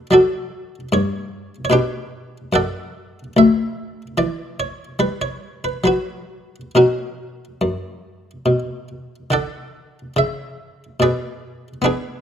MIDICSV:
0, 0, Header, 1, 2, 480
1, 0, Start_track
1, 0, Tempo, 808625
1, 1005, Tempo, 827586
1, 1492, Time_signature, 4, 2, 24, 8
1, 2925, Tempo, 867052
1, 4845, Tempo, 846262
1, 6965, End_track
2, 0, Start_track
2, 0, Title_t, "Harpsichord"
2, 0, Program_c, 0, 6
2, 64, Note_on_c, 0, 54, 54
2, 72, Note_on_c, 0, 74, 86
2, 78, Note_on_c, 0, 69, 66
2, 82, Note_on_c, 0, 66, 66
2, 444, Note_off_c, 0, 54, 0
2, 472, Note_off_c, 0, 74, 0
2, 522, Note_off_c, 0, 69, 0
2, 524, Note_off_c, 0, 66, 0
2, 549, Note_on_c, 0, 43, 59
2, 555, Note_on_c, 0, 73, 92
2, 914, Note_off_c, 0, 73, 0
2, 921, Note_off_c, 0, 43, 0
2, 979, Note_on_c, 0, 73, 69
2, 1008, Note_on_c, 0, 47, 72
2, 1011, Note_off_c, 0, 73, 0
2, 1015, Note_on_c, 0, 71, 100
2, 1024, Note_on_c, 0, 62, 72
2, 1026, Note_on_c, 0, 67, 76
2, 1397, Note_off_c, 0, 47, 0
2, 1479, Note_off_c, 0, 62, 0
2, 1480, Note_off_c, 0, 67, 0
2, 1488, Note_on_c, 0, 42, 68
2, 1494, Note_on_c, 0, 78, 102
2, 1498, Note_off_c, 0, 71, 0
2, 1504, Note_on_c, 0, 69, 81
2, 1506, Note_on_c, 0, 74, 81
2, 1872, Note_off_c, 0, 42, 0
2, 1899, Note_off_c, 0, 78, 0
2, 1952, Note_off_c, 0, 69, 0
2, 1953, Note_off_c, 0, 74, 0
2, 1975, Note_on_c, 0, 38, 69
2, 1985, Note_on_c, 0, 76, 96
2, 2352, Note_off_c, 0, 38, 0
2, 2381, Note_off_c, 0, 76, 0
2, 2445, Note_on_c, 0, 52, 61
2, 2448, Note_on_c, 0, 74, 101
2, 2685, Note_off_c, 0, 74, 0
2, 2689, Note_on_c, 0, 73, 84
2, 2830, Note_off_c, 0, 52, 0
2, 2919, Note_on_c, 0, 55, 65
2, 2923, Note_on_c, 0, 71, 102
2, 2928, Note_off_c, 0, 73, 0
2, 3040, Note_off_c, 0, 71, 0
2, 3042, Note_on_c, 0, 73, 76
2, 3278, Note_off_c, 0, 73, 0
2, 3280, Note_on_c, 0, 71, 76
2, 3300, Note_off_c, 0, 55, 0
2, 3387, Note_on_c, 0, 54, 63
2, 3389, Note_off_c, 0, 71, 0
2, 3396, Note_on_c, 0, 71, 88
2, 3405, Note_on_c, 0, 66, 70
2, 3782, Note_off_c, 0, 54, 0
2, 3811, Note_off_c, 0, 71, 0
2, 3868, Note_off_c, 0, 66, 0
2, 3893, Note_on_c, 0, 47, 55
2, 3897, Note_on_c, 0, 70, 68
2, 3900, Note_on_c, 0, 61, 49
2, 3903, Note_on_c, 0, 66, 53
2, 4275, Note_off_c, 0, 47, 0
2, 4370, Note_on_c, 0, 42, 56
2, 4752, Note_off_c, 0, 42, 0
2, 4838, Note_on_c, 0, 47, 59
2, 4912, Note_off_c, 0, 70, 0
2, 5075, Note_off_c, 0, 61, 0
2, 5076, Note_off_c, 0, 66, 0
2, 5229, Note_off_c, 0, 47, 0
2, 5318, Note_on_c, 0, 50, 60
2, 5326, Note_on_c, 0, 78, 89
2, 5333, Note_on_c, 0, 69, 68
2, 5335, Note_on_c, 0, 74, 68
2, 5704, Note_off_c, 0, 50, 0
2, 5786, Note_off_c, 0, 69, 0
2, 5787, Note_off_c, 0, 74, 0
2, 5805, Note_off_c, 0, 78, 0
2, 5805, Note_on_c, 0, 49, 58
2, 5816, Note_on_c, 0, 76, 80
2, 6185, Note_off_c, 0, 49, 0
2, 6278, Note_on_c, 0, 47, 59
2, 6285, Note_off_c, 0, 76, 0
2, 6290, Note_on_c, 0, 74, 89
2, 6292, Note_on_c, 0, 68, 64
2, 6296, Note_on_c, 0, 71, 66
2, 6662, Note_off_c, 0, 47, 0
2, 6693, Note_off_c, 0, 74, 0
2, 6742, Note_off_c, 0, 68, 0
2, 6743, Note_on_c, 0, 59, 65
2, 6744, Note_off_c, 0, 71, 0
2, 6756, Note_on_c, 0, 71, 97
2, 6759, Note_on_c, 0, 62, 75
2, 6766, Note_on_c, 0, 68, 74
2, 6965, Note_off_c, 0, 59, 0
2, 6965, Note_off_c, 0, 62, 0
2, 6965, Note_off_c, 0, 68, 0
2, 6965, Note_off_c, 0, 71, 0
2, 6965, End_track
0, 0, End_of_file